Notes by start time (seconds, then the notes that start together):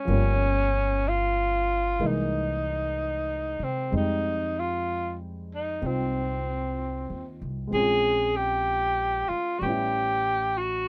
Already playing: C#4 D#4
0.05 G1 F3 G3 A#3
0.11 C#4
1.09 F4
1.99 C2 E3 G#3 A#3 D#4
2.06 D#4
3.59 C3
3.63 C4
3.91 F2 G3 G#3 C4 D#4
3.97 D#4
4.59 F4
5.55 D#4
5.82 C2 C4 D#4 F4
5.86 C4
7.10 D#2
7.42 C2
7.67 G#3 C4
7.73 A#1 C#4 G#4
7.78 F4
8.36 G4
9.28 F4, muted upright bass stroke
9.59 A1 G3 B3 F#4 G4
9.66 C#4 E4
10.57 F#4